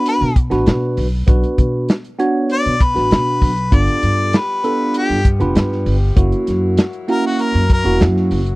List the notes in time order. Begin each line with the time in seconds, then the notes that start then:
Already playing: B3 D4 F#4 B4
0.06 B4, closed hi-hat
0.21 B2
0.36 kick, closed hi-hat
0.50 A1 B3 D4 F#4 B4, snare, closed hi-hat
0.66 B2, snare, closed hi-hat
0.97 B1, open hi-hat
1.27 B1 B3 D4 F#4 B4, kick, closed hi-hat
1.43 closed hi-hat
1.58 B2, kick, closed hi-hat
1.89 snare, closed hi-hat
2.04 closed hi-hat
2.19 B3 D4 F#4 C#5, closed hi-hat
2.50 D5, closed hi-hat
2.65 B2, closed hi-hat
2.80 B4, kick, closed hi-hat
2.95 A1 B3 D4 F#4 B4, snare, closed hi-hat
3.11 B2, snare, closed hi-hat
3.42 B1, kick, open hi-hat
3.57 closed hi-hat
3.71 G1 G3 B3 D4 F4 G4 A4 D5, kick, closed hi-hat
3.87 closed hi-hat
4.03 G2, closed hi-hat
4.33 B4, snare, closed hi-hat
4.64 B3 D4 F4 A4, closed hi-hat
4.94 G4, closed hi-hat
5.10 G2
5.25 kick, closed hi-hat
5.40 F1 B3 D4 F4 B4, closed hi-hat
5.55 G2, snare, closed hi-hat
5.72 snare
5.86 G1, open hi-hat
6.16 F#1 F#3 A#3 C#4 E4 F#4, kick, closed hi-hat
6.32 closed hi-hat
6.47 F#2, snare, closed hi-hat
6.77 snare, closed hi-hat
6.93 closed hi-hat
7.08 A#3 C#4 E4 F#4 A#4, closed hi-hat
7.27 F#4
7.39 A#4, closed hi-hat
7.54 F#2, closed hi-hat
7.70 A#4, kick, closed hi-hat
7.84 E1 A#3 C#4 E4 F#4, closed hi-hat
8.00 F#2, snare, closed hi-hat
8.17 snare
8.31 F#1, open hi-hat
8.46 closed hi-hat